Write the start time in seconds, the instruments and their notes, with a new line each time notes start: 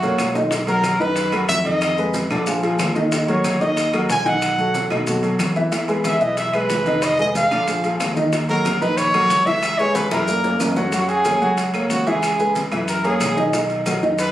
Already playing: fingered electric bass F#2, trumpet F#4
0.02 grand piano A#3 A#4 C#5, low conga, high timbale, maracas
0.18 fingered electric bass B1, high bongo, low bongo, low conga, high timbale, low timbale, claves, maracas
0.35 grand piano D#3 D#4 D#5, high bongo, low conga, maracas
0.50 grand piano D#3 D#4 D#5, high bongo, high conga, high timbale, maracas
0.67 grand piano F#3 F#4 A#4, trumpet A#4, high bongo, high conga, high timbale, maracas
0.83 high bongo, high conga, high timbale, claves, maracas
0.99 fingered electric bass F#2, grand piano D#3 D#4 D#5, trumpet B4, high conga, maracas
1.16 high bongo, high conga, high timbale, maracas
1.32 grand piano F#3 F#4 A#4, high bongo, high conga, high timbale, claves, maracas
1.48 fingered electric bass F2, trumpet E5, high bongo, low bongo, high conga, low timbale, maracas
1.65 grand piano D#3 D#4 D#5, trumpet D#5, high bongo, high conga, high timbale, maracas
1.82 high bongo, high conga, high timbale, claves, maracas
1.98 grand piano G#3 G#4 B4, high bongo, high conga, maracas
2.14 high bongo, high conga, high timbale, maracas
2.30 fingered electric bass A#1, grand piano D3 D4 D5, high conga, low conga, high timbale, claves, maracas
2.46 grand piano F3 F4 G#4, high bongo, maracas
2.63 grand piano F3 F4 G#4, high conga, high timbale, maracas
2.79 fingered electric bass D#2, high bongo, low bongo, high conga, high timbale, low timbale, claves, maracas
2.96 grand piano D#3 D#4 D#5, high bongo, high conga, maracas
3.12 grand piano D#3 D#4 D#5, high bongo, high conga, high timbale, maracas
3.28 grand piano F#3 F#4 A#4, trumpet C#5, high bongo, high conga, high timbale, maracas
3.44 high bongo, high conga, high timbale, claves, maracas
3.60 fingered electric bass D#2, grand piano D#3 D#4 D#5, trumpet D#5, maracas
3.77 high bongo, high conga, high timbale, maracas
3.93 grand piano F#3 F#4 A#4, high bongo, high conga, high timbale, claves, maracas
4.09 fingered electric bass B1, trumpet G#5, high bongo, low bongo, high conga, low timbale, maracas
4.25 grand piano D#3 D#4 D#5, trumpet F#5, high bongo, high conga, high timbale, maracas
4.42 high bongo, high conga, high timbale, claves, maracas
4.58 grand piano F#3 F#4 A4, high bongo, high conga, maracas
4.74 high bongo, high conga, high timbale, maracas
4.90 fingered electric bass B2, grand piano D#3 D#4 D#5, high conga, low conga, high timbale, claves, maracas
5.07 grand piano F#3 F#4 A4, high bongo, high conga, low conga, maracas
5.23 grand piano F#3 F#4 A4, high conga, high timbale, maracas
5.39 fingered electric bass E2, high bongo, low bongo, high conga, high timbale, claves, maracas
5.56 grand piano E3 E4 E5, high bongo, high conga, maracas
5.72 grand piano E3 E4 E5, high bongo, high timbale, maracas
5.88 grand piano G#3 G#4 B4, high bongo, high conga, high timbale, maracas
6.04 trumpet E5, high bongo, high conga, high timbale, claves, maracas
6.21 fingered electric bass B1, grand piano E3 E4 E5, trumpet D#5, maracas
6.37 trumpet E5, high bongo, high conga, high timbale, maracas
6.54 grand piano G#3 G#4 B4, trumpet B4, high bongo, high conga, high timbale, claves, maracas
6.69 fingered electric bass F1, high bongo, low bongo, high conga, low timbale, maracas
6.86 grand piano D#3 D#4 D#5, high bongo, high conga, high timbale, maracas
7.02 trumpet D#5, high bongo, high conga, high timbale, claves, maracas
7.19 grand piano G#3 G#4 B4, trumpet D#5, high bongo, high conga, maracas
7.35 trumpet F5, high bongo, high conga, high timbale, maracas
7.51 fingered electric bass A#1, grand piano D3 D4 D5, high conga, low conga, high timbale, claves, maracas
7.68 grand piano F3 F4 G#4, high bongo, high conga, maracas
7.84 grand piano F3 F4 G#4, high conga, high timbale, maracas
8.00 fingered electric bass D#2, high bongo, low bongo, high conga, high timbale, low timbale, claves, maracas
8.16 grand piano D#3 D#4 D#5, high bongo, high conga, maracas
8.33 grand piano D#3 D#4 D#5, high bongo, high timbale, maracas
8.49 grand piano F#3 F#4 A#4, trumpet A#4, high bongo, high conga, high timbale, maracas
8.65 high bongo, high conga, high timbale, claves, maracas
8.81 fingered electric bass A#1, grand piano D#3 D#4 D#5, trumpet B4, high conga, maracas
8.98 trumpet C#5, high bongo, high conga, high timbale, maracas
9.14 grand piano F#3 F#4 A#4, high bongo, high conga, high timbale, claves, maracas
9.30 fingered electric bass C#2, high bongo, low bongo, high conga, maracas
9.46 grand piano E3 E4 E5, trumpet E5, high bongo, high conga, high timbale, maracas
9.63 high bongo, high conga, high timbale, claves, maracas
9.78 grand piano G#3 G#4 B4, trumpet C#5, high bongo, high conga, maracas
9.95 trumpet B4, high bongo, high conga, high timbale, maracas
10.11 fingered electric bass F#2, grand piano E3 E4 E5, trumpet A#4, high bongo, high conga, low conga, high timbale, claves, maracas
10.27 grand piano A#3 A#4 D5, low bongo, high conga, maracas
10.44 grand piano A#3 A#4 D5, low bongo, high conga, high timbale, maracas
10.60 fingered electric bass F#2, low bongo, high conga, high timbale, claves, maracas
10.76 grand piano F#3 F#4 F#5, low bongo, high conga, low timbale, maracas
10.92 grand piano F#3 F#4 F#5, trumpet F#4, high bongo, high conga, high timbale, maracas
11.09 trumpet G#4, high bongo, high conga, high timbale, maracas
11.25 grand piano A#3 A#4 C#5, high bongo, high conga, high timbale, claves, maracas
11.41 fingered electric bass C#2, grand piano F#3 F#4 F#5, maracas
11.57 high bongo, high conga, high timbale, maracas
11.74 grand piano A#3 A#4 C#5, high bongo, high conga, high timbale, claves, maracas
11.90 fingered electric bass C#2, trumpet F#4, high bongo, low bongo, high conga, maracas
12.07 grand piano E3 E4 E5, trumpet G#4, high bongo, high conga, high timbale, maracas
12.22 high bongo, high conga, high timbale, claves, maracas
12.39 grand piano G#3 G#4 B4, high bongo, high conga, maracas
12.55 high bongo, high conga, high timbale, maracas
12.72 fingered electric bass F#2, grand piano E3 E4 E5, high conga, low conga, high timbale, claves, maracas
12.88 trumpet A#4, high bongo, high conga, maracas
13.04 grand piano A#3 A#4 C#5, trumpet G#4, high conga, high timbale, maracas
13.20 fingered electric bass B1, high bongo, low bongo, high conga, high timbale, low timbale, claves, maracas
13.37 grand piano D#3 D#4 D#5, high bongo, high conga, maracas
13.53 grand piano D#3 D#4 D#5, high bongo, high conga, high timbale, maracas
13.70 high bongo, high conga, high timbale, maracas
13.86 grand piano F#3 F#4 A#4, high bongo, high conga, high timbale, claves, maracas
14.02 fingered electric bass F#2, grand piano D#3 D#4 D#5, high conga, maracas
14.19 trumpet B4, high bongo, high conga, high timbale, maracas